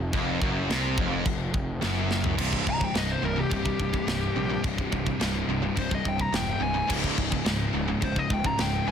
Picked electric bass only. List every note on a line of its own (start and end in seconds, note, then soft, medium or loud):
0.00 0.11 F1 medium
0.13 0.39 F1 medium
0.42 0.68 F#1 medium
0.69 0.96 C2 medium
0.98 1.24 F1 loud
1.26 1.52 F1 medium
1.54 1.80 F1 medium
1.82 2.35 F#1 medium
2.39 2.59 C1 medium
2.67 2.87 C1 medium
2.95 3.15 C1 medium
3.23 3.43 C1 loud
3.52 3.72 C1 loud
3.79 4.00 C1 loud
4.07 4.28 C1 loud
4.36 4.56 A#1 medium
4.64 4.84 C1 medium
4.93 5.13 C1 medium
5.22 5.41 C1 medium
5.49 5.69 C1 medium
5.77 5.97 C1 medium
6.05 6.25 C1 medium
6.33 6.53 E1 loud
6.61 6.81 C1 loud
6.90 7.10 C#1 medium
7.18 7.38 C#1 medium
7.46 7.66 C#1 loud
7.74 7.94 C#1 medium
8.02 8.22 C#1 medium
8.30 8.50 C#1 loud
8.60 8.79 C#1 medium
8.88 8.91 A#1 medium